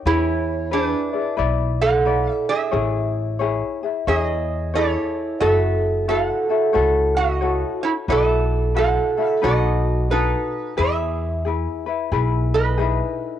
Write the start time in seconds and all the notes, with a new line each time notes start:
0.06 E2 E4 G#4 B4 C#5
0.71 D4 E4 G#4 B4 D5
1.13 E4 G#4 D5
1.37 B1 E4 B4 D5
1.82 A4 F#5
2.05 E4 B4 D5
2.33 E5
2.49 G#4 E5
2.71 A1 E4 G#4 C#5
3.39 E4 G#4 C#5
3.83 E4 G#4
4.07 E2 E4 G#4 C#5 E5
4.19 D#5
4.74 E4 G#4 A4 C#5
5.40 F#1 E4 F#4 A4 C#5 E5
6.08 E4 F#4 A4 C#5 F5
6.26 F#5
6.49 E4 F#4 A4
6.73 C#2 E4 F#4 A4 C#5
7.17 F#4 D#5
7.41 E4 F#4 A4 C#5
7.83 E4 C#5
8.08 B1 E4 F#4 A4 B4 E5
8.75 E4 F#4 A4 B4 F#5
9.17 E4 F#4 A4
9.29 E5
9.42 B1 D#4 F#4 A4 B4 D#5
10.10 D#4 F#4 A4 B4
10.77 E2 E4 G#4 B4 E5
11.45 E4 G#4 B4
11.86 E4 B4
12.12 B1 E4 G#4 B4
12.54 B4 D#5
12.78 D#4 E4 G#4 B4